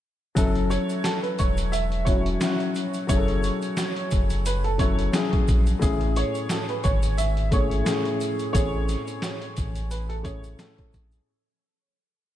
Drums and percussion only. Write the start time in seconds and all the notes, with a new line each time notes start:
0.37 kick, closed hi-hat, shaker
0.55 closed hi-hat
0.70 closed hi-hat, shaker
0.89 closed hi-hat, shaker
1.04 snare, closed hi-hat, shaker
1.24 closed hi-hat
1.38 kick, closed hi-hat, shaker
1.57 closed hi-hat, shaker
1.73 closed hi-hat, shaker
1.92 closed hi-hat
2.07 kick, closed hi-hat, shaker
2.26 closed hi-hat
2.41 snare, closed hi-hat, shaker
2.60 closed hi-hat
2.75 closed hi-hat, shaker
2.93 closed hi-hat, shaker
3.09 kick, closed hi-hat, shaker
3.28 closed hi-hat
3.43 closed hi-hat, shaker
3.62 closed hi-hat, shaker
3.77 snare, closed hi-hat, shaker
3.96 closed hi-hat
4.11 kick, closed hi-hat, shaker
4.30 closed hi-hat, shaker
4.46 closed hi-hat, shaker
4.64 closed hi-hat
4.79 kick, closed hi-hat, shaker
4.99 closed hi-hat
5.13 snare, closed hi-hat, shaker
5.33 kick, closed hi-hat
5.48 kick, closed hi-hat, shaker
5.66 closed hi-hat, shaker
5.82 kick, closed hi-hat, shaker
6.01 closed hi-hat
6.16 closed hi-hat, shaker
6.35 closed hi-hat, shaker
6.49 snare, closed hi-hat, shaker
6.69 closed hi-hat
6.84 kick, closed hi-hat, shaker
7.03 closed hi-hat, shaker
7.18 closed hi-hat, shaker
7.37 closed hi-hat
7.52 kick, closed hi-hat, shaker
7.71 closed hi-hat
7.86 snare, closed hi-hat, shaker
8.05 closed hi-hat
8.20 closed hi-hat, shaker
8.39 closed hi-hat, shaker
8.55 kick, closed hi-hat, shaker
8.88 snare, closed hi-hat, shaker
9.07 closed hi-hat, shaker
9.22 snare, closed hi-hat, shaker
9.42 closed hi-hat
9.57 kick, closed hi-hat, shaker
9.75 closed hi-hat, shaker
9.91 closed hi-hat, shaker
10.10 closed hi-hat
10.25 kick, closed hi-hat, shaker
10.44 closed hi-hat, shaker
10.59 snare, closed hi-hat, shaker
10.78 kick, closed hi-hat
10.93 kick, closed hi-hat, shaker
11.12 closed hi-hat, shaker